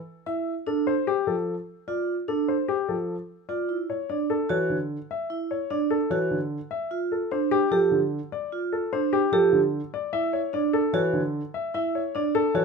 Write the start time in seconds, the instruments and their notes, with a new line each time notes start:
0.26 vibraphone E4, grand piano E5
0.67 vibraphone D4, grand piano A4
0.87 grand piano C5
1.07 grand piano G4
1.27 grand piano F3 A4
1.88 vibraphone F4, grand piano D5
2.28 vibraphone D4, grand piano A4
2.48 grand piano C5
2.68 grand piano G4
2.88 grand piano F3 A4
3.49 vibraphone F4, grand piano D5
3.69 vibraphone E4
3.90 grand piano C#5
4.09 vibraphone D4, grand piano D5
4.30 grand piano A4
4.49 grand piano E3 C#5, vibraphone F#4
4.70 grand piano D3
5.11 grand piano E5
5.30 vibraphone E4
5.51 grand piano C#5
5.70 vibraphone D4, grand piano D5
5.91 grand piano A4
6.10 grand piano E3 C#5, vibraphone F#4
6.31 grand piano D3
6.71 grand piano E5
6.91 vibraphone F4
7.12 grand piano A4
7.31 vibraphone D4, grand piano C5
7.51 grand piano G4
7.71 grand piano F3 A4, vibraphone G4
7.91 grand piano D3
8.32 grand piano D5
8.52 vibraphone F4
8.72 grand piano A4
8.93 vibraphone D4, grand piano C5
9.13 grand piano G4
9.32 grand piano F3 A4, vibraphone G4
9.52 grand piano D3
9.94 grand piano D5
10.13 vibraphone E4, grand piano E5
10.33 grand piano C#5
10.53 vibraphone D4, grand piano D5
10.73 grand piano A4
10.93 grand piano E3 C#5, vibraphone F#4
11.13 grand piano D3
11.54 grand piano E5
11.74 vibraphone E4, grand piano E5
11.95 grand piano C#5
12.15 vibraphone D4, grand piano D5
12.35 grand piano A4
12.54 grand piano E3 C#5, vibraphone F#4